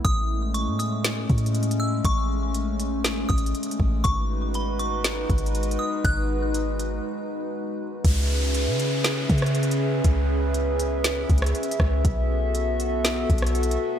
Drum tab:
HH |x-----------x-----x-----x-----x-x-x-x-x-x-------|x-----------x-----x-----x-----x-x-x-x-x-x-------|x-----------x-----x-----x-----x-x-x-x-x-x-------|x-----------x-----x-----------------------------|
SD |------------------------o-----------------------|------------------------o-----------------------|------------------------o-----------------------|------------------------------------------------|
BD |o-----------------------------o-----------------|o-----------------------------o-----------o-----|o-----------------------------o-----------------|o-----------------------------------------------|

HH |x-----------x-----x-----x-----x-x-x-x-x-x-------|x-----------x-----x-----x-----x-x-x-x-x-x-------|x-----------x-----x-----x-----x-x-x-x-x-x-------|
SD |------------------------o--------r--------------|------------------------o--------r--------r-----|------------------------o--------r--------------|
BD |o-----------------------------o-----------------|o-----------------------------o-----------o-----|o-----------------------------o-----------------|